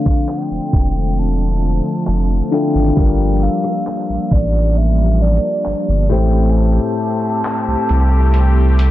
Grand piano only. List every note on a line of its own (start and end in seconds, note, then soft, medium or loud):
0.00 0.37 D3 medium
0.00 0.37 C4 medium
0.00 0.37 D4 medium
0.00 0.38 F4 medium
0.00 0.38 C5 medium
2.51 2.84 D3 medium
2.51 2.85 D4 medium
2.51 2.85 E4 medium
2.51 2.85 F4 medium
2.51 2.85 A4 medium
2.96 4.27 G3 medium
2.96 4.28 D4 medium
2.96 4.28 F4 medium
2.96 4.28 A4 medium
2.96 4.28 A#4 medium
6.09 7.53 A2 medium
6.09 7.53 A3 medium
6.09 7.54 E4 medium
6.09 7.54 G4 medium
6.09 7.54 C5 medium